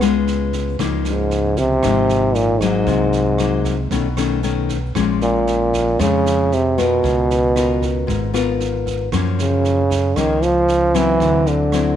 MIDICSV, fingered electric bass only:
0, 0, Header, 1, 2, 480
1, 0, Start_track
1, 0, Key_signature, -5, "major"
1, 0, Tempo, 521286
1, 725, Time_signature, 4, 2, 24, 8
1, 11016, End_track
2, 0, Start_track
2, 0, Title_t, "Fingered electric bass"
2, 0, Program_c, 0, 33
2, 0, Note_on_c, 0, 37, 75
2, 691, Note_off_c, 0, 37, 0
2, 733, Note_on_c, 0, 37, 79
2, 1651, Note_off_c, 0, 37, 0
2, 1687, Note_on_c, 0, 32, 73
2, 2607, Note_off_c, 0, 32, 0
2, 2640, Note_on_c, 0, 36, 86
2, 3564, Note_off_c, 0, 36, 0
2, 3602, Note_on_c, 0, 35, 71
2, 4524, Note_off_c, 0, 35, 0
2, 4560, Note_on_c, 0, 34, 90
2, 5483, Note_off_c, 0, 34, 0
2, 5520, Note_on_c, 0, 41, 75
2, 6443, Note_off_c, 0, 41, 0
2, 6482, Note_on_c, 0, 37, 82
2, 7404, Note_off_c, 0, 37, 0
2, 7444, Note_on_c, 0, 32, 73
2, 8365, Note_off_c, 0, 32, 0
2, 8404, Note_on_c, 0, 42, 77
2, 9325, Note_off_c, 0, 42, 0
2, 9359, Note_on_c, 0, 37, 73
2, 10283, Note_off_c, 0, 37, 0
2, 10318, Note_on_c, 0, 38, 80
2, 11016, Note_off_c, 0, 38, 0
2, 11016, End_track
0, 0, End_of_file